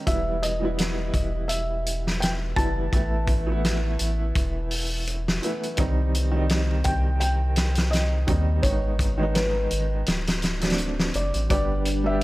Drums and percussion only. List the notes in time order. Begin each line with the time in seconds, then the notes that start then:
0.07 kick, closed hi-hat
0.43 closed hi-hat
0.78 snare, closed hi-hat
1.14 kick, closed hi-hat
1.49 closed hi-hat
1.86 closed hi-hat
2.07 snare
2.22 snare, closed hi-hat
2.56 kick, closed hi-hat
2.93 kick, closed hi-hat
3.27 kick, closed hi-hat
3.65 snare, closed hi-hat
3.99 closed hi-hat
4.35 kick, closed hi-hat
4.71 open hi-hat
5.07 closed hi-hat
5.28 snare
5.43 closed hi-hat
5.63 closed hi-hat
5.77 kick, closed hi-hat
6.15 closed hi-hat
6.49 snare, closed hi-hat
6.84 kick, closed hi-hat
7.21 closed hi-hat
7.56 snare, closed hi-hat
7.75 snare, closed hi-hat
7.93 snare, closed hi-hat
8.28 kick, closed hi-hat
8.63 kick, closed hi-hat
8.99 kick, closed hi-hat
9.35 snare, closed hi-hat
9.71 closed hi-hat
10.06 snare, closed hi-hat
10.27 snare, closed hi-hat
10.42 snare, closed hi-hat
10.61 snare, closed hi-hat
10.70 snare, closed hi-hat
10.78 closed hi-hat
11.00 snare
11.14 closed hi-hat
11.34 closed hi-hat
11.50 kick, closed hi-hat
11.85 closed hi-hat